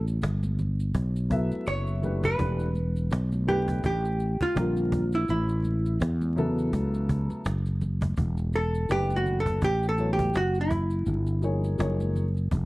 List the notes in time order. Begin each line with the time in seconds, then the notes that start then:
Already playing: A1
0.07 maracas
0.22 G1, cajon slap, low conga, maracas
0.43 high conga, maracas
0.59 cajon slap, low conga, maracas
0.80 maracas
0.94 B1, cajon bass, maracas
1.16 maracas
1.29 F#3 B3 E4 A4 E5, cajon bass, maracas
1.51 muted fretless electric bass stroke, high conga, maracas
1.66 F#1 C#5, cajon slap, maracas
1.87 maracas
2.02 E3 A3 D4 G4 B4, cajon slap, low conga, maracas
2.23 B4, cajon bass, maracas
2.38 E1 E3 A3 D4 G4 B4, cajon bass, maracas
2.59 maracas
2.74 cajon slap, high conga, maracas
2.96 maracas
3.11 B1, cajon slap, low conga, maracas
3.32 high conga, maracas
3.47 E3 A3 D4 G4 B4, low conga, maracas
3.68 cajon bass, maracas
3.83 A1 G4, cajon bass, maracas
4.05 maracas
4.19 cajon slap, maracas
4.41 F4, cajon bass, high conga, maracas
4.55 A#1 D3 G3 C4 F4 A#4, cajon slap, maracas
4.77 maracas
4.92 cajon bass, low conga, maracas
5.12 E4, maracas
5.28 A1 E4, cajon slap, maracas
5.49 maracas
5.63 cajon slap, high conga, maracas
5.86 maracas
6.00 E2, cajon slap, low conga, maracas
6.21 high conga, maracas
6.36 C#3 F#3 B3 E4 A4, cajon slap, low conga, maracas
6.58 maracas
6.73 C#2, cajon bass, high conga, maracas
6.94 maracas
7.09 cajon bass, maracas
7.30 muted fretless electric bass stroke, high conga, maracas
7.45 F#1, cajon slap, maracas
7.66 cajon slap, maracas
7.81 cajon slap, low conga, maracas
8.01 cajon bass, high conga, maracas
8.17 E1, cajon bass, maracas
8.37 maracas
8.53 A4, cajon slap, maracas
8.74 maracas
8.89 F#1 E3 A3 D4 G4 B4, cajon slap, maracas
9.10 high conga, maracas
9.16 F#4
9.26 cajon slap, low conga, maracas
9.40 A4
9.46 cajon bass, maracas
9.61 A1 G4, cajon bass, maracas
9.83 maracas
9.89 A4
9.97 F#3 B3 E4 A4 C#5, cajon slap, maracas
10.13 G4
10.19 cajon bass, high conga, maracas
10.33 F#1 F#4, cajon slap, maracas
10.54 maracas
10.61 E4
10.70 cajon bass, low conga, maracas
10.90 maracas
11.06 G1, cajon slap, maracas
11.27 maracas
11.42 F3 A#3 D#4 G#4 C#5, cajon slap, maracas
11.64 maracas
11.78 F#1 F3 A#3 D#4 G#4 C#5, cajon slap, maracas
12.00 high conga, maracas
12.16 cajon slap, low conga, maracas
12.37 maracas
12.51 F1, cajon bass, maracas